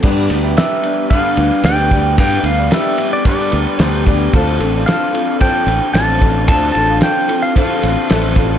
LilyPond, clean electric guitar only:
\new Staff \with { instrumentName = "Clean electric guitar" } { \time 4/4 \key g \mixolydian \tempo 4 = 112 <g, d g b d' g'>8 <g b d' g'>8 <g b d' g'>4 <g, d g b d' g'>8 <g b d' g'>8 <g b d' g'>8 <g b d' g'>8 | <g, d g b d' g'>8 <g b d' g'>8 <g b d' g'>4 <g, d g b d' g'>8 <g b d' g'>8 <g b d' g'>8 <g b d' g'>8 | <d f c' d' a'>8 <c' d' a'>8 <f c' d' a'>4 <d f c' d' a'>8 <c' d' a'>8 <f c' d' a'>8 <c' d' a'>8 | <d f c' d' a'>8 <c' d' a'>8 <f c' d' a'>4 <d f c' d' a'>8 <c' d' a'>8 <f c' d' a'>8 <c' d' a'>8 | }